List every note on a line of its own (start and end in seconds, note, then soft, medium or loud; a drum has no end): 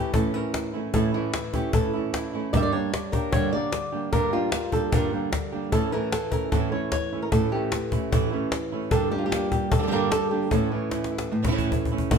0.00 0.14 A2 medium
0.00 1.13 E3 soft
0.00 0.14 A3 soft
0.00 0.13 C#4 soft
0.00 0.92 C#4 soft
0.00 0.13 E4 soft
0.00 0.74 E4 soft
0.00 0.14 G4 medium
0.14 0.91 A2 medium
0.14 0.33 E3 soft
0.14 0.33 A3 soft
0.14 0.34 C#4 soft
0.14 0.32 E4 soft
0.14 0.34 A4 medium
0.14 cajon bass medium
0.34 0.73 C#4 soft
0.34 0.72 E4 soft
0.34 0.94 A#4 medium
0.54 cajon slap medium
0.73 0.94 A3 soft
0.73 0.93 C#4 soft
0.73 0.93 E4 soft
0.73 0.92 E4 soft
0.94 1.73 A2 medium
0.94 1.13 A2 medium
0.94 1.13 E3 medium
0.94 1.13 A3 medium
0.94 1.14 C#4 medium
0.94 1.13 E4 medium
0.94 1.54 A4 medium
0.94 cajon bass medium
1.14 2.53 E3 medium
1.14 1.33 A3 soft
1.14 1.33 C#4 soft
1.14 1.33 E4 soft
1.14 1.32 E4 medium
1.34 1.93 E4 medium
1.34 muted nylon-string guitar stroke soft
1.34 cajon slap medium
1.53 1.73 A3 soft
1.53 1.73 C#4 soft
1.53 1.73 E4 soft
1.53 1.74 G4 medium
1.53 cajon bass medium
1.73 2.51 A2 medium
1.73 1.93 E3 soft
1.73 1.93 A3 soft
1.73 1.93 C#4 soft
1.73 1.92 E4 soft
1.73 2.53 A4 medium
1.73 cajon bass loud
1.93 2.33 A3 soft
1.93 2.33 C#4 soft
1.93 2.32 E4 soft
1.93 cajon slap soft
2.14 2.33 E4 soft
2.14 cajon slap medium
2.33 2.53 A3 soft
2.33 2.53 C#4 soft
2.33 2.52 E4 soft
2.33 2.51 E4 soft
2.53 2.72 G2 medium
2.53 2.73 D3 medium
2.53 4.10 G3 medium
2.53 2.73 G3 medium
2.53 2.73 A#3 medium
2.53 2.73 D4 medium
2.53 2.72 G4 medium
2.53 2.57 D5 loud
2.53 cajon bass medium
2.57 2.62 E5 medium
2.63 2.72 D5 loud
2.72 2.93 G3 soft
2.72 2.93 A#3 soft
2.72 4.10 D4 medium
2.72 2.93 D4 soft
2.72 2.92 G4 soft
2.72 3.31 C#5 loud
2.72 cajon slap soft
2.94 muted nylon-string guitar stroke soft
2.94 cajon slap medium
3.12 3.33 G3 soft
3.12 3.33 A#3 soft
3.12 3.33 D4 soft
3.12 3.33 G4 soft
3.12 3.72 A#4 medium
3.12 cajon bass medium
3.32 3.52 G2 medium
3.32 4.10 D3 medium
3.32 3.52 D3 medium
3.32 3.52 G3 medium
3.32 3.53 A#3 medium
3.32 3.52 D4 medium
3.32 3.52 G4 medium
3.32 3.52 C#5 loud
3.32 cajon bass loud
3.53 3.72 G3 soft
3.53 3.72 A#3 soft
3.53 3.72 D4 soft
3.53 3.72 G4 soft
3.53 4.12 D5 loud
3.73 muted nylon-string guitar stroke medium
3.73 cajon slap medium
3.92 4.12 G3 soft
3.92 4.12 A#3 soft
3.92 4.12 D4 soft
3.92 4.12 G4 soft
4.12 5.70 G2 medium
4.12 4.32 G2 medium
4.12 4.32 D3 medium
4.12 4.32 G3 medium
4.12 4.32 A#3 medium
4.12 4.31 D4 medium
4.12 4.31 G4 medium
4.12 4.72 A#4 loud
4.12 cajon bass medium
4.32 5.70 G3 medium
4.32 4.52 G3 soft
4.32 4.52 A#3 soft
4.32 4.52 D4 soft
4.32 4.51 F4 medium
4.32 4.51 G4 soft
4.32 cajon slap soft
4.52 5.12 F4 medium
4.52 muted nylon-string guitar stroke soft
4.52 cajon slap loud
4.72 4.92 G3 soft
4.72 4.92 A#3 soft
4.72 4.92 D4 soft
4.72 4.92 G4 soft
4.72 4.93 A4 medium
4.72 cajon bass medium
4.92 5.12 G2 medium
4.92 5.70 D3 medium
4.92 5.12 D3 medium
4.92 5.12 G3 medium
4.92 5.12 A#3 medium
4.92 5.12 D4 medium
4.92 5.12 G4 medium
4.92 5.72 A#4 medium
4.92 cajon bass medium
5.13 5.31 G3 soft
5.13 5.31 A#3 soft
5.13 5.32 D4 soft
5.13 5.32 G4 soft
5.13 cajon slap soft
5.32 muted nylon-string guitar stroke soft
5.32 cajon bass medium
5.32 cajon slap medium
5.52 5.72 G3 soft
5.52 5.72 A#3 soft
5.52 5.72 D4 soft
5.52 5.71 G4 soft
5.72 7.29 A2 medium
5.72 5.91 A2 medium
5.72 5.92 E3 medium
5.72 5.92 A3 medium
5.72 5.92 C#4 medium
5.72 5.91 E4 medium
5.72 5.92 A4 medium
5.72 cajon bass medium
5.92 6.51 E3 medium
5.92 6.11 A3 soft
5.92 6.12 C#4 soft
5.92 6.12 E4 soft
5.92 6.12 A#4 medium
5.92 cajon slap soft
6.12 6.31 A4 medium
6.12 muted nylon-string guitar stroke soft
6.12 cajon slap medium
6.31 6.52 A3 soft
6.31 6.52 C#4 soft
6.31 6.51 E4 soft
6.31 6.52 A#4 medium
6.31 cajon bass medium
6.52 6.71 A2 medium
6.52 7.30 E3 medium
6.52 6.72 E3 medium
6.52 6.72 A3 medium
6.52 6.72 C#4 medium
6.52 6.71 E4 medium
6.52 6.71 A4 medium
6.52 cajon bass loud
6.52 cajon slap soft
6.72 6.92 A3 soft
6.72 6.92 C#4 soft
6.72 6.91 E4 soft
6.72 6.91 C#5 medium
6.92 7.22 C#5 loud
6.92 muted nylon-string guitar stroke soft
6.92 cajon bass medium
6.92 cajon slap medium
7.12 7.32 A3 soft
7.12 7.32 C#4 soft
7.12 7.31 E4 soft
7.22 7.32 A#4 medium
7.32 8.89 A2 medium
7.32 7.51 A2 medium
7.32 7.52 E3 medium
7.32 7.52 A3 medium
7.32 7.52 C#4 medium
7.32 7.51 E4 medium
7.32 7.92 A4 loud
7.32 cajon bass medium
7.52 8.11 E3 medium
7.52 7.72 A3 soft
7.52 7.72 C#4 soft
7.52 7.71 E4 soft
7.52 8.92 G4 medium
7.72 muted nylon-string guitar stroke soft
7.72 cajon slap loud
7.92 8.12 A3 soft
7.92 8.12 C#4 soft
7.92 8.11 E4 soft
7.92 cajon bass medium
8.12 8.31 A2 medium
8.12 8.90 E3 medium
8.12 8.31 E3 medium
8.12 8.32 A3 medium
8.12 8.32 C#4 medium
8.12 8.31 E4 medium
8.12 cajon bass loud
8.32 8.52 A3 soft
8.32 8.90 C#4 soft
8.32 8.52 C#4 soft
8.32 8.51 E4 soft
8.52 muted nylon-string guitar stroke medium
8.52 cajon slap medium
8.72 8.92 A3 soft
8.72 8.92 C#4 soft
8.72 8.91 E4 soft
8.91 10.49 G2 medium
8.91 9.11 G2 medium
8.91 9.11 D3 medium
8.91 9.11 G3 medium
8.91 9.12 A#3 medium
8.91 9.11 D4 medium
8.91 9.11 G4 medium
8.91 9.11 A4 medium
8.91 cajon bass medium
9.11 10.49 G3 medium
9.11 9.32 G3 soft
9.11 9.31 A#3 soft
9.11 9.31 D4 soft
9.11 9.25 G4 medium
9.11 9.31 G4 soft
9.18 9.66 F4 medium
9.26 9.51 G4 medium
9.32 9.71 G3 soft
9.32 9.71 A#3 soft
9.32 9.71 D4 soft
9.32 9.71 G4 soft
9.32 cajon slap medium
9.52 9.71 G4 medium
9.52 cajon bass medium
9.71 10.49 D3 medium
9.71 9.91 A4 medium
9.71 muted nylon-string guitar stroke medium
9.71 cajon bass loud
9.78 9.81 D3 soft
9.78 9.82 G3 soft
9.78 9.82 A#3 soft
9.78 9.82 D4 soft
9.78 9.82 G4 soft
9.83 9.86 D3 medium
9.83 9.86 G3 soft
9.83 9.87 A#3 medium
9.83 9.87 D4 soft
9.83 9.87 G4 medium
9.87 9.91 D3 medium
9.87 9.91 G3 medium
9.87 9.91 A#3 medium
9.87 9.92 D4 medium
9.87 9.92 G4 medium
9.91 10.11 G2 medium
9.91 10.11 D3 medium
9.91 10.11 G3 medium
9.91 10.11 A#3 medium
9.91 10.11 D4 medium
9.91 10.11 G4 medium
9.91 10.11 A#4 medium
10.12 10.31 G3 soft
10.12 10.31 A#3 soft
10.12 10.31 A4 medium
10.12 cajon slap loud
10.31 10.51 G3 soft
10.31 10.52 A#3 soft
10.31 10.51 D4 soft
10.31 10.51 G4 medium
10.31 10.51 G4 soft
10.51 10.71 A2 medium
10.51 11.30 A2 medium
10.51 10.71 E3 medium
10.51 10.71 A3 medium
10.51 10.71 C#4 medium
10.51 10.71 E4 medium
10.51 12.11 A4 medium
10.51 cajon bass medium
10.72 12.18 E3 medium
10.72 10.92 A3 soft
10.72 10.91 C#4 soft
10.72 10.90 E4 soft
10.91 11.31 A3 soft
10.91 11.31 C#4 soft
10.91 11.31 E4 soft
10.91 cajon slap medium
11.04 cajon slap medium
11.12 12.09 E4 soft
11.18 cajon slap medium
11.31 12.09 A2 medium
11.31 muted nylon-string guitar stroke medium
11.43 11.46 E3 soft
11.43 11.46 A3 soft
11.43 11.47 C#4 soft
11.43 11.47 E4 soft
11.43 cajon bass medium
11.47 11.51 E3 soft
11.47 11.51 A3 medium
11.47 11.51 C#4 medium
11.47 11.52 E4 medium
11.51 11.71 A2 medium
11.51 11.71 E3 medium
11.51 11.71 A3 medium
11.51 11.71 C#4 medium
11.51 11.71 E4 medium
11.58 cajon bass medium
11.72 11.91 E3 soft
11.72 11.91 A3 soft
11.72 11.91 C#4 soft
11.72 11.90 E4 soft
11.72 cajon bass medium
11.85 cajon bass medium
11.91 12.11 A3 soft
11.91 12.11 C#4 soft
11.91 12.11 E4 soft
11.98 cajon bass medium
12.11 12.18 A2 medium
12.11 12.18 E3 medium
12.11 12.18 A3 medium
12.11 12.18 C#4 medium
12.11 12.18 E4 medium
12.11 muted nylon-string guitar stroke medium
12.11 cajon bass loud